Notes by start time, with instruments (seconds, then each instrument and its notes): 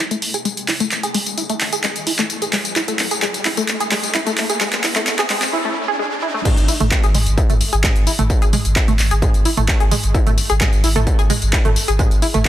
Already playing: riser
0.11 synth arpeggio sound A3, closed hi-hat, tambourine
0.22 open hi-hat
0.34 synth arpeggio sound G#4, closed hi-hat, tambourine
0.45 synth arpeggio sound G#3, closed hi-hat, tambourine
0.57 closed hi-hat, tambourine
0.68 synth arpeggio sound E4, clap, open hi-hat
0.80 synth arpeggio sound A3, closed hi-hat, tambourine
0.91 clap, closed hi-hat, tambourine
1.03 synth arpeggio sound G#4, closed hi-hat, tambourine
1.14 synth arpeggio sound G#3, open hi-hat
1.26 closed hi-hat, tambourine
1.38 synth arpeggio sound E4, closed hi-hat, tambourine
1.50 synth arpeggio sound A3, closed hi-hat, tambourine
1.61 clap, open hi-hat
1.73 synth arpeggio sound G#4, closed hi-hat, tambourine
1.84 synth arpeggio sound G#3, clap, closed hi-hat, tambourine
1.96 closed hi-hat, tambourine
2.07 synth arpeggio sound E4, open hi-hat
2.19 synth arpeggio sound A3, clap, closed hi-hat, tambourine
2.30 closed hi-hat, tambourine
2.42 synth arpeggio sound G#4, closed hi-hat, tambourine
2.53 synth arpeggio sound G#3, clap, open hi-hat
2.65 closed hi-hat, tambourine
2.76 synth arpeggio sound E4, clap, closed hi-hat, tambourine
2.88 synth arpeggio sound A3, closed hi-hat, tambourine
2.99 clap, open hi-hat
3.11 synth arpeggio sound G#4, closed hi-hat, tambourine
3.22 synth arpeggio sound G#3, clap, closed hi-hat, tambourine
3.34 closed hi-hat, tambourine
3.45 synth arpeggio sound E4, clap, open hi-hat
3.57 synth arpeggio sound A3, closed hi-hat, tambourine
3.68 clap, closed hi-hat, tambourine
3.80 synth arpeggio sound G#4, closed hi-hat, tambourine
3.91 synth arpeggio sound G#3, clap, open hi-hat
4.03 closed hi-hat, tambourine
4.15 synth arpeggio sound E4, clap, closed hi-hat, tambourine
4.27 synth arpeggio sound A3, closed hi-hat, tambourine
4.38 clap, open hi-hat
4.50 synth arpeggio sound G#4, closed hi-hat, tambourine
4.61 synth arpeggio sound G#3, clap, closed hi-hat, tambourine
4.73 clap, closed hi-hat, tambourine
4.84 synth arpeggio sound E4, clap, open hi-hat
4.96 synth arpeggio sound A3, clap, closed hi-hat, tambourine
5.07 clap, closed hi-hat, tambourine
5.19 synth arpeggio sound G#4, clap, closed hi-hat, tambourine
5.30 synth arpeggio sound G#3, clap, open hi-hat
5.42 clap, open hi-hat, tambourine
5.53 synth arpeggio sound E4
5.65 synth arpeggio sound A3
5.88 synth arpeggio sound G#4
5.99 synth arpeggio sound G#3
6.22 synth arpeggio sound E4
6.34 synth arpeggio sound A3
6.45 synth arpeggio sound G#3, kick, closed hi-hat, mid tom, crash, tambourine
6.57 sub bass G#1, closed hi-hat, tambourine
6.68 synth arpeggio sound E4, open hi-hat, tambourine
6.80 sub bass G#1, synth arpeggio sound A3, closed hi-hat, mid tom, tambourine
6.91 kick, clap, closed hi-hat, tambourine
7.03 sub bass G#1, synth arpeggio sound G#4, closed hi-hat, tambourine
7.15 sub bass G#1, synth arpeggio sound G#3, mid tom, open hi-hat, tambourine
7.27 sub bass G#1, closed hi-hat, tambourine
7.38 synth arpeggio sound E4, kick, closed hi-hat, tambourine
7.50 sub bass G#1, synth arpeggio sound A3, closed hi-hat, mid tom, tambourine
7.61 open hi-hat, tambourine
7.73 sub bass G#1, synth arpeggio sound G#4, closed hi-hat, tambourine
7.84 synth arpeggio sound G#3, kick, clap, closed hi-hat, mid tom, tambourine
7.96 sub bass G#1, closed hi-hat
8.07 synth arpeggio sound E4, open hi-hat, tambourine
8.19 sub bass G#1, synth arpeggio sound A3, closed hi-hat, mid tom, tambourine
8.30 kick, closed hi-hat, tambourine
8.42 sub bass G#1, synth arpeggio sound G#4, closed hi-hat, tambourine
8.53 synth arpeggio sound G#3, mid tom, open hi-hat, tambourine
8.65 sub bass G#1, closed hi-hat, tambourine
8.76 synth arpeggio sound E4, kick, clap, closed hi-hat, tambourine
8.88 sub bass G#1, synth arpeggio sound A3, closed hi-hat, mid tom, tambourine
8.99 sub bass G#1, clap, open hi-hat, tambourine
9.11 sub bass G#1, synth arpeggio sound G#4, closed hi-hat, tambourine
9.22 synth arpeggio sound G#3, kick, closed hi-hat, mid tom, tambourine
9.34 sub bass G#1, closed hi-hat, tambourine
9.45 synth arpeggio sound E4, open hi-hat, tambourine
9.57 sub bass G#1, synth arpeggio sound A3, closed hi-hat, mid tom, tambourine
9.68 kick, clap, closed hi-hat, tambourine
9.80 sub bass G#1, synth arpeggio sound G#4, closed hi-hat
9.91 synth arpeggio sound G#3, mid tom, open hi-hat, tambourine
10.03 sub bass G#1, closed hi-hat, tambourine
10.15 synth arpeggio sound E4, kick, closed hi-hat, tambourine
10.27 sub bass G#1, synth arpeggio sound A3, closed hi-hat, mid tom, tambourine
10.38 open hi-hat, tambourine
10.50 sub bass G#1, synth arpeggio sound G#4, closed hi-hat, tambourine
10.61 synth arpeggio sound G#3, kick, clap, closed hi-hat, mid tom, tambourine
10.73 sub bass G#1, closed hi-hat, tambourine
10.84 sub bass G#1, synth arpeggio sound E4, open hi-hat, tambourine
10.96 sub bass G#1, synth arpeggio sound A3, closed hi-hat, mid tom, tambourine
11.07 kick, closed hi-hat, tambourine
11.19 sub bass G#1, synth arpeggio sound G#4, closed hi-hat, tambourine
11.30 synth arpeggio sound G#3, mid tom, open hi-hat, tambourine
11.42 sub bass G#1, closed hi-hat, tambourine
11.53 synth arpeggio sound E4, kick, clap, closed hi-hat, tambourine
11.65 sub bass G#1, synth arpeggio sound A3, closed hi-hat, mid tom
11.76 open hi-hat, tambourine
11.88 sub bass G#1, synth arpeggio sound G#4, closed hi-hat, tambourine
11.99 synth arpeggio sound G#3, kick, closed hi-hat, mid tom, tambourine
12.11 sub bass G#1, closed hi-hat, tambourine
12.22 synth arpeggio sound E4, open hi-hat, tambourine
12.34 sub bass G#1, synth arpeggio sound A3, closed hi-hat, mid tom, tambourine
12.45 kick